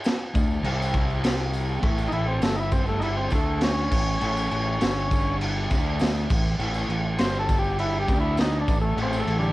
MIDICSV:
0, 0, Header, 1, 5, 480
1, 0, Start_track
1, 0, Tempo, 595238
1, 1476, Time_signature, 4, 2, 24, 8
1, 7682, End_track
2, 0, Start_track
2, 0, Title_t, "Transistor combo organ"
2, 0, Program_c, 0, 18
2, 1681, Note_on_c, 0, 63, 79
2, 1711, Note_off_c, 0, 63, 0
2, 1718, Note_on_c, 0, 64, 110
2, 1829, Note_off_c, 0, 64, 0
2, 1836, Note_on_c, 0, 60, 72
2, 1947, Note_off_c, 0, 60, 0
2, 1962, Note_on_c, 0, 57, 87
2, 2064, Note_on_c, 0, 63, 72
2, 2070, Note_off_c, 0, 57, 0
2, 2089, Note_off_c, 0, 63, 0
2, 2093, Note_on_c, 0, 64, 100
2, 2193, Note_on_c, 0, 60, 84
2, 2196, Note_off_c, 0, 64, 0
2, 2305, Note_off_c, 0, 60, 0
2, 2325, Note_on_c, 0, 57, 86
2, 2412, Note_on_c, 0, 63, 76
2, 2432, Note_off_c, 0, 57, 0
2, 2439, Note_off_c, 0, 63, 0
2, 2443, Note_on_c, 0, 64, 103
2, 2551, Note_off_c, 0, 64, 0
2, 2558, Note_on_c, 0, 60, 74
2, 2668, Note_off_c, 0, 60, 0
2, 2696, Note_on_c, 0, 57, 86
2, 2919, Note_off_c, 0, 57, 0
2, 2927, Note_on_c, 0, 61, 104
2, 4330, Note_off_c, 0, 61, 0
2, 5795, Note_on_c, 0, 72, 107
2, 5952, Note_off_c, 0, 72, 0
2, 5962, Note_on_c, 0, 69, 96
2, 6115, Note_off_c, 0, 69, 0
2, 6120, Note_on_c, 0, 67, 84
2, 6274, Note_off_c, 0, 67, 0
2, 6288, Note_on_c, 0, 64, 98
2, 6439, Note_off_c, 0, 64, 0
2, 6448, Note_on_c, 0, 67, 75
2, 6599, Note_off_c, 0, 67, 0
2, 6613, Note_on_c, 0, 64, 94
2, 6761, Note_off_c, 0, 64, 0
2, 6776, Note_on_c, 0, 63, 93
2, 6923, Note_off_c, 0, 63, 0
2, 6939, Note_on_c, 0, 62, 83
2, 7084, Note_off_c, 0, 62, 0
2, 7105, Note_on_c, 0, 57, 93
2, 7247, Note_off_c, 0, 57, 0
2, 7275, Note_on_c, 0, 60, 98
2, 7413, Note_off_c, 0, 60, 0
2, 7413, Note_on_c, 0, 57, 88
2, 7561, Note_off_c, 0, 57, 0
2, 7573, Note_on_c, 0, 50, 92
2, 7573, Note_on_c, 0, 55, 102
2, 7682, Note_off_c, 0, 50, 0
2, 7682, Note_off_c, 0, 55, 0
2, 7682, End_track
3, 0, Start_track
3, 0, Title_t, "Distorted electric guitar"
3, 0, Program_c, 1, 30
3, 270, Note_on_c, 1, 50, 61
3, 271, Note_on_c, 1, 57, 75
3, 466, Note_off_c, 1, 50, 0
3, 466, Note_off_c, 1, 57, 0
3, 509, Note_on_c, 1, 48, 97
3, 511, Note_on_c, 1, 55, 92
3, 517, Note_on_c, 1, 60, 115
3, 1460, Note_off_c, 1, 48, 0
3, 1463, Note_on_c, 1, 45, 92
3, 1465, Note_off_c, 1, 55, 0
3, 1468, Note_off_c, 1, 60, 0
3, 1468, Note_on_c, 1, 52, 88
3, 1473, Note_on_c, 1, 57, 106
3, 1699, Note_off_c, 1, 52, 0
3, 1700, Note_off_c, 1, 45, 0
3, 1707, Note_off_c, 1, 57, 0
3, 1708, Note_on_c, 1, 52, 66
3, 1709, Note_on_c, 1, 45, 68
3, 1904, Note_off_c, 1, 45, 0
3, 1904, Note_off_c, 1, 52, 0
3, 1947, Note_on_c, 1, 43, 91
3, 1953, Note_on_c, 1, 50, 99
3, 1958, Note_on_c, 1, 55, 107
3, 2661, Note_off_c, 1, 50, 0
3, 2664, Note_off_c, 1, 43, 0
3, 2669, Note_off_c, 1, 55, 0
3, 2671, Note_on_c, 1, 50, 85
3, 2677, Note_on_c, 1, 57, 100
3, 2677, Note_on_c, 1, 62, 108
3, 3146, Note_off_c, 1, 50, 0
3, 3149, Note_off_c, 1, 57, 0
3, 3149, Note_off_c, 1, 62, 0
3, 3151, Note_on_c, 1, 45, 72
3, 3155, Note_on_c, 1, 52, 77
3, 3345, Note_off_c, 1, 45, 0
3, 3347, Note_off_c, 1, 52, 0
3, 3389, Note_on_c, 1, 45, 90
3, 3398, Note_on_c, 1, 52, 94
3, 3401, Note_on_c, 1, 57, 104
3, 3623, Note_off_c, 1, 45, 0
3, 3630, Note_off_c, 1, 52, 0
3, 3631, Note_off_c, 1, 57, 0
3, 3633, Note_on_c, 1, 45, 68
3, 3638, Note_on_c, 1, 52, 73
3, 3827, Note_off_c, 1, 45, 0
3, 3829, Note_off_c, 1, 52, 0
3, 3871, Note_on_c, 1, 43, 83
3, 3879, Note_on_c, 1, 50, 96
3, 3881, Note_on_c, 1, 55, 107
3, 4587, Note_off_c, 1, 43, 0
3, 4591, Note_off_c, 1, 50, 0
3, 4605, Note_on_c, 1, 50, 87
3, 4607, Note_off_c, 1, 55, 0
3, 4607, Note_on_c, 1, 57, 95
3, 4613, Note_on_c, 1, 62, 95
3, 5074, Note_off_c, 1, 50, 0
3, 5075, Note_off_c, 1, 57, 0
3, 5078, Note_off_c, 1, 62, 0
3, 5086, Note_on_c, 1, 45, 72
3, 5090, Note_on_c, 1, 52, 74
3, 5274, Note_off_c, 1, 45, 0
3, 5276, Note_off_c, 1, 52, 0
3, 5319, Note_on_c, 1, 45, 84
3, 5326, Note_on_c, 1, 52, 96
3, 5328, Note_on_c, 1, 57, 112
3, 5548, Note_off_c, 1, 45, 0
3, 5549, Note_off_c, 1, 52, 0
3, 5556, Note_off_c, 1, 57, 0
3, 5557, Note_on_c, 1, 45, 63
3, 5559, Note_on_c, 1, 52, 80
3, 5750, Note_off_c, 1, 45, 0
3, 5751, Note_off_c, 1, 52, 0
3, 5802, Note_on_c, 1, 43, 98
3, 5808, Note_on_c, 1, 50, 95
3, 5811, Note_on_c, 1, 55, 109
3, 6509, Note_off_c, 1, 50, 0
3, 6513, Note_off_c, 1, 43, 0
3, 6519, Note_on_c, 1, 50, 78
3, 6524, Note_off_c, 1, 55, 0
3, 6524, Note_on_c, 1, 57, 103
3, 6525, Note_on_c, 1, 62, 85
3, 6991, Note_off_c, 1, 50, 0
3, 6994, Note_off_c, 1, 57, 0
3, 6994, Note_off_c, 1, 62, 0
3, 6996, Note_on_c, 1, 45, 64
3, 7001, Note_on_c, 1, 52, 72
3, 7189, Note_off_c, 1, 45, 0
3, 7192, Note_off_c, 1, 52, 0
3, 7230, Note_on_c, 1, 45, 95
3, 7238, Note_on_c, 1, 52, 93
3, 7241, Note_on_c, 1, 57, 98
3, 7451, Note_off_c, 1, 45, 0
3, 7456, Note_off_c, 1, 52, 0
3, 7461, Note_on_c, 1, 45, 65
3, 7465, Note_on_c, 1, 52, 83
3, 7472, Note_off_c, 1, 57, 0
3, 7661, Note_off_c, 1, 45, 0
3, 7663, Note_off_c, 1, 52, 0
3, 7682, End_track
4, 0, Start_track
4, 0, Title_t, "Fingered electric bass"
4, 0, Program_c, 2, 33
4, 279, Note_on_c, 2, 38, 73
4, 501, Note_off_c, 2, 38, 0
4, 515, Note_on_c, 2, 36, 109
4, 1442, Note_off_c, 2, 36, 0
4, 1470, Note_on_c, 2, 33, 85
4, 1696, Note_off_c, 2, 33, 0
4, 1709, Note_on_c, 2, 33, 80
4, 1935, Note_off_c, 2, 33, 0
4, 1948, Note_on_c, 2, 31, 82
4, 2639, Note_off_c, 2, 31, 0
4, 2671, Note_on_c, 2, 38, 90
4, 3121, Note_off_c, 2, 38, 0
4, 3154, Note_on_c, 2, 33, 78
4, 3378, Note_off_c, 2, 33, 0
4, 3401, Note_on_c, 2, 33, 96
4, 3622, Note_off_c, 2, 33, 0
4, 3640, Note_on_c, 2, 33, 87
4, 3862, Note_off_c, 2, 33, 0
4, 3882, Note_on_c, 2, 31, 96
4, 4567, Note_off_c, 2, 31, 0
4, 4599, Note_on_c, 2, 38, 93
4, 5046, Note_off_c, 2, 38, 0
4, 5082, Note_on_c, 2, 33, 83
4, 5303, Note_off_c, 2, 33, 0
4, 5314, Note_on_c, 2, 33, 96
4, 5539, Note_off_c, 2, 33, 0
4, 5554, Note_on_c, 2, 33, 84
4, 5779, Note_off_c, 2, 33, 0
4, 5797, Note_on_c, 2, 31, 87
4, 6486, Note_off_c, 2, 31, 0
4, 6515, Note_on_c, 2, 38, 85
4, 6964, Note_off_c, 2, 38, 0
4, 6997, Note_on_c, 2, 33, 80
4, 7221, Note_off_c, 2, 33, 0
4, 7231, Note_on_c, 2, 33, 91
4, 7457, Note_off_c, 2, 33, 0
4, 7473, Note_on_c, 2, 33, 85
4, 7682, Note_off_c, 2, 33, 0
4, 7682, End_track
5, 0, Start_track
5, 0, Title_t, "Drums"
5, 33, Note_on_c, 9, 54, 95
5, 42, Note_on_c, 9, 49, 84
5, 51, Note_on_c, 9, 38, 122
5, 114, Note_off_c, 9, 54, 0
5, 123, Note_off_c, 9, 49, 0
5, 131, Note_off_c, 9, 38, 0
5, 281, Note_on_c, 9, 54, 75
5, 283, Note_on_c, 9, 36, 116
5, 284, Note_on_c, 9, 49, 64
5, 361, Note_off_c, 9, 54, 0
5, 363, Note_off_c, 9, 36, 0
5, 365, Note_off_c, 9, 49, 0
5, 409, Note_on_c, 9, 54, 28
5, 490, Note_off_c, 9, 54, 0
5, 518, Note_on_c, 9, 49, 81
5, 533, Note_on_c, 9, 54, 27
5, 599, Note_off_c, 9, 49, 0
5, 614, Note_off_c, 9, 54, 0
5, 663, Note_on_c, 9, 54, 76
5, 743, Note_off_c, 9, 54, 0
5, 755, Note_on_c, 9, 49, 59
5, 758, Note_on_c, 9, 36, 90
5, 781, Note_on_c, 9, 54, 27
5, 836, Note_off_c, 9, 49, 0
5, 839, Note_off_c, 9, 36, 0
5, 861, Note_off_c, 9, 54, 0
5, 890, Note_on_c, 9, 54, 31
5, 970, Note_off_c, 9, 54, 0
5, 998, Note_on_c, 9, 49, 100
5, 1005, Note_on_c, 9, 54, 94
5, 1007, Note_on_c, 9, 38, 125
5, 1079, Note_off_c, 9, 49, 0
5, 1086, Note_off_c, 9, 54, 0
5, 1088, Note_off_c, 9, 38, 0
5, 1133, Note_on_c, 9, 54, 31
5, 1213, Note_off_c, 9, 54, 0
5, 1237, Note_on_c, 9, 49, 61
5, 1242, Note_on_c, 9, 54, 73
5, 1318, Note_off_c, 9, 49, 0
5, 1322, Note_off_c, 9, 54, 0
5, 1363, Note_on_c, 9, 54, 29
5, 1443, Note_off_c, 9, 54, 0
5, 1476, Note_on_c, 9, 36, 108
5, 1477, Note_on_c, 9, 49, 77
5, 1557, Note_off_c, 9, 36, 0
5, 1557, Note_off_c, 9, 49, 0
5, 1600, Note_on_c, 9, 54, 68
5, 1681, Note_off_c, 9, 54, 0
5, 1711, Note_on_c, 9, 49, 56
5, 1792, Note_off_c, 9, 49, 0
5, 1951, Note_on_c, 9, 49, 87
5, 1951, Note_on_c, 9, 54, 102
5, 1960, Note_on_c, 9, 38, 125
5, 2032, Note_off_c, 9, 49, 0
5, 2032, Note_off_c, 9, 54, 0
5, 2041, Note_off_c, 9, 38, 0
5, 2190, Note_on_c, 9, 49, 61
5, 2190, Note_on_c, 9, 54, 70
5, 2195, Note_on_c, 9, 36, 89
5, 2271, Note_off_c, 9, 49, 0
5, 2271, Note_off_c, 9, 54, 0
5, 2275, Note_off_c, 9, 36, 0
5, 2310, Note_on_c, 9, 54, 26
5, 2390, Note_off_c, 9, 54, 0
5, 2433, Note_on_c, 9, 49, 74
5, 2513, Note_off_c, 9, 49, 0
5, 2663, Note_on_c, 9, 54, 72
5, 2670, Note_on_c, 9, 49, 60
5, 2677, Note_on_c, 9, 36, 88
5, 2743, Note_off_c, 9, 54, 0
5, 2751, Note_off_c, 9, 49, 0
5, 2757, Note_off_c, 9, 36, 0
5, 2909, Note_on_c, 9, 49, 97
5, 2916, Note_on_c, 9, 54, 86
5, 2918, Note_on_c, 9, 38, 117
5, 2989, Note_off_c, 9, 49, 0
5, 2997, Note_off_c, 9, 54, 0
5, 2998, Note_off_c, 9, 38, 0
5, 3156, Note_on_c, 9, 49, 106
5, 3157, Note_on_c, 9, 54, 74
5, 3158, Note_on_c, 9, 36, 101
5, 3237, Note_off_c, 9, 49, 0
5, 3238, Note_off_c, 9, 54, 0
5, 3239, Note_off_c, 9, 36, 0
5, 3294, Note_on_c, 9, 54, 27
5, 3374, Note_off_c, 9, 54, 0
5, 3394, Note_on_c, 9, 49, 81
5, 3474, Note_off_c, 9, 49, 0
5, 3523, Note_on_c, 9, 54, 68
5, 3603, Note_off_c, 9, 54, 0
5, 3638, Note_on_c, 9, 49, 68
5, 3718, Note_off_c, 9, 49, 0
5, 3876, Note_on_c, 9, 49, 96
5, 3885, Note_on_c, 9, 38, 116
5, 3888, Note_on_c, 9, 54, 98
5, 3957, Note_off_c, 9, 49, 0
5, 3966, Note_off_c, 9, 38, 0
5, 3968, Note_off_c, 9, 54, 0
5, 4120, Note_on_c, 9, 49, 66
5, 4122, Note_on_c, 9, 36, 94
5, 4125, Note_on_c, 9, 54, 73
5, 4201, Note_off_c, 9, 49, 0
5, 4203, Note_off_c, 9, 36, 0
5, 4206, Note_off_c, 9, 54, 0
5, 4242, Note_on_c, 9, 54, 26
5, 4323, Note_off_c, 9, 54, 0
5, 4361, Note_on_c, 9, 49, 84
5, 4442, Note_off_c, 9, 49, 0
5, 4599, Note_on_c, 9, 54, 71
5, 4603, Note_on_c, 9, 49, 64
5, 4604, Note_on_c, 9, 36, 91
5, 4680, Note_off_c, 9, 54, 0
5, 4684, Note_off_c, 9, 36, 0
5, 4684, Note_off_c, 9, 49, 0
5, 4834, Note_on_c, 9, 54, 97
5, 4844, Note_on_c, 9, 49, 90
5, 4852, Note_on_c, 9, 38, 125
5, 4915, Note_off_c, 9, 54, 0
5, 4924, Note_off_c, 9, 49, 0
5, 4933, Note_off_c, 9, 38, 0
5, 5080, Note_on_c, 9, 54, 79
5, 5084, Note_on_c, 9, 36, 118
5, 5087, Note_on_c, 9, 49, 97
5, 5160, Note_off_c, 9, 54, 0
5, 5165, Note_off_c, 9, 36, 0
5, 5168, Note_off_c, 9, 49, 0
5, 5210, Note_on_c, 9, 54, 29
5, 5291, Note_off_c, 9, 54, 0
5, 5320, Note_on_c, 9, 49, 78
5, 5401, Note_off_c, 9, 49, 0
5, 5436, Note_on_c, 9, 54, 73
5, 5517, Note_off_c, 9, 54, 0
5, 5561, Note_on_c, 9, 49, 67
5, 5641, Note_off_c, 9, 49, 0
5, 5793, Note_on_c, 9, 49, 86
5, 5794, Note_on_c, 9, 54, 91
5, 5802, Note_on_c, 9, 38, 118
5, 5873, Note_off_c, 9, 49, 0
5, 5875, Note_off_c, 9, 54, 0
5, 5882, Note_off_c, 9, 38, 0
5, 6037, Note_on_c, 9, 54, 72
5, 6040, Note_on_c, 9, 36, 99
5, 6040, Note_on_c, 9, 49, 62
5, 6118, Note_off_c, 9, 54, 0
5, 6121, Note_off_c, 9, 36, 0
5, 6121, Note_off_c, 9, 49, 0
5, 6160, Note_on_c, 9, 54, 27
5, 6241, Note_off_c, 9, 54, 0
5, 6278, Note_on_c, 9, 49, 80
5, 6359, Note_off_c, 9, 49, 0
5, 6515, Note_on_c, 9, 49, 60
5, 6519, Note_on_c, 9, 36, 89
5, 6520, Note_on_c, 9, 54, 68
5, 6596, Note_off_c, 9, 49, 0
5, 6600, Note_off_c, 9, 36, 0
5, 6601, Note_off_c, 9, 54, 0
5, 6753, Note_on_c, 9, 54, 81
5, 6757, Note_on_c, 9, 49, 79
5, 6766, Note_on_c, 9, 38, 124
5, 6833, Note_off_c, 9, 54, 0
5, 6837, Note_off_c, 9, 49, 0
5, 6846, Note_off_c, 9, 38, 0
5, 6998, Note_on_c, 9, 49, 58
5, 7000, Note_on_c, 9, 36, 112
5, 7002, Note_on_c, 9, 54, 73
5, 7079, Note_off_c, 9, 49, 0
5, 7081, Note_off_c, 9, 36, 0
5, 7083, Note_off_c, 9, 54, 0
5, 7115, Note_on_c, 9, 54, 27
5, 7196, Note_off_c, 9, 54, 0
5, 7240, Note_on_c, 9, 49, 74
5, 7241, Note_on_c, 9, 54, 28
5, 7320, Note_off_c, 9, 49, 0
5, 7322, Note_off_c, 9, 54, 0
5, 7361, Note_on_c, 9, 54, 79
5, 7441, Note_off_c, 9, 54, 0
5, 7478, Note_on_c, 9, 49, 65
5, 7559, Note_off_c, 9, 49, 0
5, 7596, Note_on_c, 9, 54, 29
5, 7676, Note_off_c, 9, 54, 0
5, 7682, End_track
0, 0, End_of_file